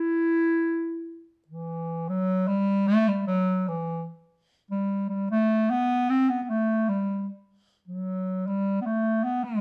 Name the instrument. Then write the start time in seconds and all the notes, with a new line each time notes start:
clarinet
Already playing: E4
1.47 E3
2.09 F#3
2.48 G3
2.87 A3
3.08 G3
3.27 F#3
3.68 E3
4.71 G3
5.09 G3
5.31 A3
5.70 B3
6.09 C4
6.29 B3
6.42 B3
6.50 A3
6.89 G3
7.88 F#3
8.47 G3
8.81 B3
8.86 A3
9.24 B3
9.44 G3